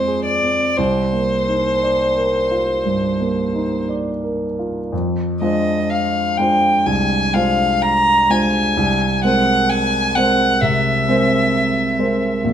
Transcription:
Already playing: grand piano F2 G#3 C4 C5, violin C5
0.08 grand piano G#4
0.25 violin D5
0.43 grand piano C4
0.77 grand piano C2, violin C5
1.13 grand piano A#3
1.49 grand piano D#4
1.83 grand piano D5
2.17 grand piano A#4
2.51 grand piano F4
2.86 grand piano G2
3.21 grand piano A#3
3.55 grand piano D#4
3.89 grand piano D5
4.24 grand piano A#4
4.59 grand piano F4
4.92 grand piano F2
5.41 grand piano G#3 D4 F4 C5, violin D#5
5.90 violin F5
6.37 grand piano G#3 D4 F4 C5, violin G5
6.86 grand piano C2, violin G#5
7.34 grand piano G#3 D4 F4 C5, violin F5
7.82 violin A#5
8.30 grand piano G#3 D4 F4 C5, violin G#5
8.77 grand piano C2
9.24 grand piano G#3 C4 A#4 C5, violin F#5
9.69 violin G#5
10.15 grand piano G#3 C4 A#4 C5, violin F#5
10.61 grand piano C3, violin E5
11.08 grand piano G#3 C4 A#4 C5
11.99 grand piano G#3 C4 A#4 C5
12.44 grand piano A#1

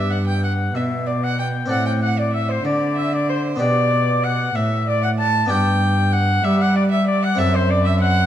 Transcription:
Already playing: harpsichord G2 B3 D4 B4, cello G2, violin E5
0.10 oboe F#5, violin F#5
0.28 violin G5, oboe G5
0.44 oboe F#5, violin F#5
0.75 harpsichord B2, cello B2, oboe E5, violin E5
1.07 violin D5, oboe D5
1.24 oboe F#5, violin F#5
1.39 violin G5, oboe G5
1.66 harpsichord C4 D4 A4
1.70 cello A2, harpsichord A2, oboe F#5, violin F#5
1.86 violin G5, oboe G5
2.02 oboe F#5, violin F#5
2.19 violin D5, oboe D5
2.33 violin E5, oboe E5
2.49 violin C5, oboe C5
2.65 harpsichord D3, cello D3, violin D5, oboe D5
2.97 violin E5, oboe E5
3.13 violin D5, oboe D5
3.29 violin C5, oboe C5
3.56 harpsichord B3 D4 G4, violin D5
3.60 cello B2, harpsichord B2, oboe D5
4.23 violin F#5, oboe F#5
4.55 harpsichord A2, cello A2, violin E5, oboe E5
4.87 violin D5, oboe D5
5.03 violin F#5, oboe F#5
5.19 violin A5, oboe A5
5.46 harpsichord B3 D4 G4
5.50 cello G2, harpsichord G2, violin G5, oboe G5
6.13 violin F#5, oboe F#5
6.44 harpsichord G3, cello G3, violin E5, oboe E5
6.60 violin F#5, oboe F#5
6.76 violin D5, oboe D5
6.92 violin E5, oboe E5
7.07 violin D5, oboe D5
7.23 violin F#5, oboe F#5
7.35 cello F#2, harpsichord C4 E4 A4, violin E5
7.39 harpsichord F#2, oboe E5
7.54 violin C5, oboe C5
7.69 violin D5, oboe D5
7.85 violin E5, oboe E5
8.01 violin F#5, oboe F#5

